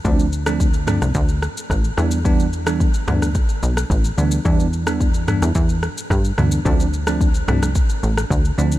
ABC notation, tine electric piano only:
X:1
M:4/4
L:1/16
Q:1/4=109
K:Ddor
V:1 name="Tine electric piano"
[F,A,CD] z2 [F,A,CD] z2 [F,A,CD] z6 z [E,G,B,D] z | [E,G,B,D] z2 [E,G,B,D] z2 [E,G,B,D] z6 z [E,G,B,D] z | [E,G,B,D] z2 [E,G,B,D] z2 [E,G,B,D] z6 z [E,G,B,D] z | [F,A,CD] z2 [F,A,CD] z2 [F,A,CD] z6 z [F,A,CD] z |]